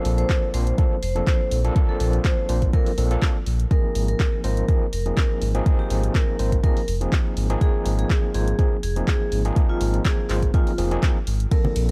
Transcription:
Already playing: F3 A#3 C4 D4 A4
0.05 A#1, open hi-hat
0.18 C5, closed hi-hat
0.29 kick, clap, closed hi-hat
0.54 A#1 F3 A#3 C4 D4 C5, open hi-hat
0.67 closed hi-hat
0.78 F3 A#3 C4 D4 A4, kick, closed hi-hat
1.03 F1 C5, open hi-hat
1.15 F3 A#3 C4 D4 A4, closed hi-hat
1.27 C5, kick, clap, closed hi-hat
1.51 A#1, open hi-hat
1.64 F3 A#3 C4 D4 A4, closed hi-hat
1.75 F3 A#3 C4 D4 A4, kick, closed hi-hat
1.89 A4
2.00 A#1, open hi-hat
2.13 closed hi-hat
2.25 C5, kick, clap, closed hi-hat
2.49 A#1 F3 A#3 C4 D4 C5, open hi-hat
2.62 kick, closed hi-hat
2.73 F3 A#3 C4 D4 A4 A#4, kick, closed hi-hat
2.86 open hi-hat
2.98 A#1 F3 A#3 C4 D4 A4, open hi-hat
3.11 F3 A#3 C4 D4 A4, closed hi-hat
3.22 kick, clap, closed hi-hat
3.46 A#1, open hi-hat
3.60 closed hi-hat
3.71 F3 A#3 C4 D#4 G#4 A#4, kick, closed hi-hat
3.95 G#1, open hi-hat
4.08 A#4, closed hi-hat
4.20 kick, clap, closed hi-hat
4.44 G#1 F3 A#3 C4 D#4 A#4 C5, open hi-hat
4.57 closed hi-hat
4.68 F3 A#3 C4 D#4 G#4, kick, closed hi-hat
4.93 F1 A#4, open hi-hat
5.06 F3 A#3 C4 D#4 G#4, closed hi-hat
5.17 A#4, kick, clap, closed hi-hat
5.42 G#1, open hi-hat
5.54 F3 A#3 C4 D#4 G#4, closed hi-hat
5.66 D#4 G#4, kick, closed hi-hat
5.79 G4
5.90 G#1, open hi-hat
6.03 closed hi-hat
6.15 A#4, kick, clap, closed hi-hat
6.39 G#1 F3 A#3 C4 D#4 C5, open hi-hat
6.52 kick, closed hi-hat
6.63 F3 A#3 C4 D#4 G#4 A#4, kick, closed hi-hat
6.77 open hi-hat
6.88 F1, open hi-hat
7.01 F3 A#3 C4 D#4 G#4, closed hi-hat
7.12 kick, clap, closed hi-hat
7.37 G#1, open hi-hat
7.50 F3 A#3 C4 D#4 G#4, closed hi-hat
7.61 F3 A#3 C4 D#4 G#4, kick, closed hi-hat
7.85 G#1, open hi-hat
7.99 G#4, closed hi-hat
8.10 kick, clap, closed hi-hat
8.34 G#1 F3 A#3 C4 D#4 G#4 C5, open hi-hat
8.48 closed hi-hat
8.59 F3 A#3 C4 D#4 G#4, kick, closed hi-hat
8.83 F1 G#4, open hi-hat
8.96 F3 A#3 C4 D#4 G#4, closed hi-hat
9.08 G#4, kick, clap, closed hi-hat
9.32 G#1, open hi-hat
9.45 F3 A#3 C4 D#4 G#4, closed hi-hat
9.56 F3 A#3 C4 D#4 G#4, kick, closed hi-hat
9.69 F4
9.81 G#1, open hi-hat
9.94 closed hi-hat
10.05 G#4, kick, clap, closed hi-hat
10.29 G#1 F3 A#3 C4 D#4 C5, clap, open hi-hat
10.43 kick, closed hi-hat
10.54 F3 A#3 C4 D#4 F4 G#4, kick, closed hi-hat
10.67 open hi-hat
10.78 F1 F3 A#3 C4 D#4 G#4, open hi-hat
10.91 F3 A#3 C4 D#4 G#4, closed hi-hat
11.03 kick, clap, closed hi-hat
11.27 G#1, open hi-hat
11.40 closed hi-hat
11.51 F3 A#3 C4 D4 A4 A#4, kick, closed hi-hat, ride
11.65 high conga
11.76 A#1, open hi-hat, ride

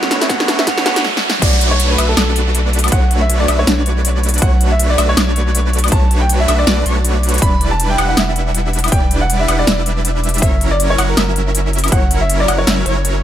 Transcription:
Already playing: A3 B3 D4 F#4 A4 B4 C#5 F#5 C#6, riser
0.03 snare
0.11 snare, closed hi-hat
0.21 E5, snare, closed hi-hat
0.27 A3 B3 D4 F#4 A4 C#5 F#5, kick, snare, closed hi-hat
0.40 snare
0.48 snare, closed hi-hat
0.59 E5, snare
0.65 A3 B3 D4 F#4 A4 B4 C#5 F#5, kick, snare, closed hi-hat
0.69 C#5
0.78 snare
0.84 A3 B3 D4 F#4 A4 B4 C#5 F#5, snare, closed hi-hat
0.96 snare, closed hi-hat
1.05 snare
1.17 snare
1.30 snare
1.42 B1 A3 D4 F#4 B4 C#5 D5, kick, closed hi-hat, crash, downlifter
1.61 closed hi-hat
1.71 C#5
1.80 closed hi-hat
1.90 B4
1.98 B1 A3 D4 F#4 B4 E5, closed hi-hat, high woodblock
2.09 A4
2.17 B1 A3 D4 F#4 B4 D5, snare, closed hi-hat, high woodblock
2.36 closed hi-hat
2.55 closed hi-hat
2.73 closed hi-hat
2.79 closed hi-hat
2.84 closed hi-hat, high woodblock
2.88 C#5, closed hi-hat
2.92 B1 A3 D4 F#4 B4 C#5 F#5, kick, closed hi-hat
3.11 closed hi-hat
3.21 E5
3.30 closed hi-hat
3.40 D5
3.48 B1 A3 D4 F#4 B4 E5, closed hi-hat, high woodblock
3.59 C#5
3.67 B1 A3 D4 F#4 B4 D5, snare, closed hi-hat
3.86 closed hi-hat
4.05 closed hi-hat
4.23 closed hi-hat
4.29 closed hi-hat
4.34 closed hi-hat
4.38 B1 F#5, closed hi-hat
4.42 A3 D4 F#4 C#5, kick, closed hi-hat
4.61 closed hi-hat
4.71 E5
4.79 closed hi-hat
4.90 D5
4.98 B1 A3 D4 F#4 B4 E5, closed hi-hat, high woodblock
5.09 C#5
5.17 B1 A3 D4 F#4 B4 D5, snare, closed hi-hat, high woodblock
5.36 closed hi-hat
5.55 closed hi-hat
5.73 closed hi-hat
5.79 closed hi-hat
5.84 closed hi-hat, high woodblock
5.88 B1, closed hi-hat
5.92 A3 D4 F#4 B4 C#5 A5, kick, closed hi-hat
6.11 closed hi-hat
6.21 G5
6.29 closed hi-hat
6.40 E5
6.48 B1 A3 D4 F#4 B4 E5, closed hi-hat, high woodblock
6.59 D5
6.67 B1 A3 D4 F#4 B4 D5, snare, closed hi-hat
6.86 B1 A3 D4 F#4 B4 C#5 C#6, closed hi-hat
7.05 closed hi-hat
7.23 closed hi-hat
7.29 closed hi-hat
7.34 closed hi-hat
7.38 E1 D5, kick, closed hi-hat
7.42 G3 D4 B4 B5, closed hi-hat
7.61 closed hi-hat
7.71 A5
7.80 closed hi-hat
7.90 G5
7.98 E1 G3 D4 E4 B4 F#5, closed hi-hat, high woodblock
8.09 F#5
8.17 E1 G3 D4 E4 B4 E5, snare, closed hi-hat, high woodblock
8.36 closed hi-hat
8.55 closed hi-hat
8.73 closed hi-hat
8.79 closed hi-hat
8.84 closed hi-hat, high woodblock
8.88 closed hi-hat
8.92 E1 G3 D4 D5 G5, kick, closed hi-hat
9.11 closed hi-hat
9.22 F#5
9.30 closed hi-hat
9.40 E5
9.48 E1 G3 D4 E4 B4 F#5, closed hi-hat, high woodblock
9.59 D5
9.67 E1 G3 D4 E4 B4 E5, snare, closed hi-hat
9.86 closed hi-hat
10.05 closed hi-hat
10.24 closed hi-hat
10.29 closed hi-hat
10.34 closed hi-hat
10.38 F#1 F#3 C#4 E4 A#4 C#5 E5, kick, closed hi-hat
10.42 closed hi-hat
10.61 closed hi-hat
10.71 D5
10.80 closed hi-hat
10.90 C#5
10.98 F#1 F#3 C#4 E4 A#4 F#5, closed hi-hat, high woodblock
11.09 A#4
11.17 F#1 F#3 C#4 E4 A#4 E5, snare, closed hi-hat, high woodblock
11.36 closed hi-hat
11.55 closed hi-hat
11.73 closed hi-hat
11.79 closed hi-hat
11.84 closed hi-hat, high woodblock
11.88 closed hi-hat
11.92 F#1 F#3 C#4 A#4 C#5 F#5, kick, closed hi-hat
12.11 closed hi-hat
12.21 E5
12.30 closed hi-hat
12.40 D5
12.48 F#1 F#3 C#4 E4 A#4 F#5, closed hi-hat, high woodblock
12.58 C#5
12.67 F#1 F#3 C#4 E4 A#4 E5, snare, closed hi-hat
12.86 F#1 F#3 C#4 E4 A#4 C#5, closed hi-hat
13.05 closed hi-hat

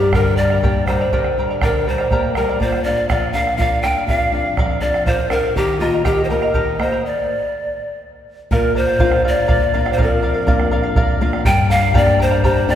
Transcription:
Already playing: G2 G3 G4
0.01 A#4 D5 A#5
0.13 D3 G4 A#4 D5 G5 A#5, bombo rim, bombo low
0.37 G3 A#4 D5 G5 A#5, bombo rim
0.50 A#4 D5 A#5, bombo rim
0.63 A#3 G4 A#4 D5 G5 A#5, bombo low
0.87 G3 A#4 C5 D5 G5 A#5, bombo rim
0.99 A#4 D5 A#5, bombo rim
1.12 D3 G4 A#4 D5 G5 A#5, bombo low
1.24 bombo rim
1.38 G3 A#4 D5 G5 A#5, bombo rim
1.51 A#4 D5 A#5
1.62 D3 G4 A#4 D5 G5 A#5, bombo rim, bombo low
1.87 G3 A#4 C5 D5 G5 A#5
1.98 A#4 D5 A#5, bombo rim
2.11 A#3 G4 A#4 D5 G5 A#5, bombo low
2.35 G3 A#4 D5 G5 A#5, bombo rim
2.49 A#4 D5 A#5
2.60 A#2 A#4 C5 D5 F5, bombo rim, bombo low
2.72 bombo rim
2.84 D4 A#4 D5 F5
2.99 D5 F5
3.09 F3 A#4 D5 F5, bombo rim, bombo low
3.33 D4 A#4 D5 F5, bombo rim
3.47 D5 F5, bombo rim
3.57 F4 A#4 D5 F5, bombo low
3.83 D4 A#4 D5 F5 G5, bombo rim
3.96 D5 F5, bombo rim
4.07 F2 A#4 D5 F5, bombo rim, bombo low
4.32 D4 A#4 D5 F5
4.46 D5 F5
4.57 F3 A#4 D5 F5, bombo rim, bombo low
4.81 D4 A#4 D5 F5, bombo rim
4.94 D5 F5, bombo rim
5.06 F4 A#4 C5 D5 F5, bombo low
5.30 D4 A#4 D5 F5, bombo rim
5.44 D5 F5, bombo rim
5.56 D#3 G4 A#4 D#5 G5 A#5, bombo rim, bombo low
5.68 bombo rim
5.80 A#3 F4 A#4 D#5 G5 A#5
5.93 A#4 D#5 A#5
6.04 D#3 G4 A#4 D#5 G5 A#5, bombo rim, bombo low
6.24 C5
6.30 A#3 A#4 D#5 G5 A#5, bombo rim
6.42 A#4 D#5 A#5, bombo rim
6.54 D#3 G4 A#4 D#5 G5 A#5, bombo low
6.79 A#3 A#4 C5 D#5 G5 A#5, bombo rim
6.92 A#4 D#5 A#5, bombo rim
7.06 D5
8.51 A#2 A#4 D5 F5, bombo low
8.64 bombo rim
8.75 A#4 C5 D5 F5
8.88 D5 F5, bombo rim
8.99 A#3 D4 F4 A#4 D5 F5, bombo low
9.12 bombo rim
9.24 A#4 D5 F5
9.36 D5 F5
9.48 A#4 D5 F5, bombo low
9.74 A#3 D4 F4 A#4 D5 F5
9.85 D5 F5, bombo rim
9.93 C5
9.97 F2 A#4 D5 F5, bombo low
10.03 A#4
10.12 bombo rim
10.22 A#4 D5 F5
10.34 D5 F5, bombo rim
10.47 A#3 D4 F4 A#4 D5 F5, bombo low
10.60 bombo rim
10.71 A#4 D5 F5
10.83 D5 F5
10.96 A#4 D5 F5, bombo low
11.21 A#3 D4 F4 A#4 D5 F5
11.33 D5 F5, bombo rim
11.45 G2 G4 A#4 D5 G5 A#5, bombo low
11.57 bombo rim
11.69 A#4 D5 F5 G5 A#5
11.81 A#4 D5 A#5, bombo rim
11.94 A#3 D4 G4 A#4 D5 G5 A#5, bombo low
12.07 bombo rim
12.19 A#4 C5 D5 G5 A#5
12.31 A#4 D5 A#5
12.43 G4 A#4 C5 D5 G5 A#5, bombo low
12.68 A#3 D4 G4 A#4 D5 G5 A#5

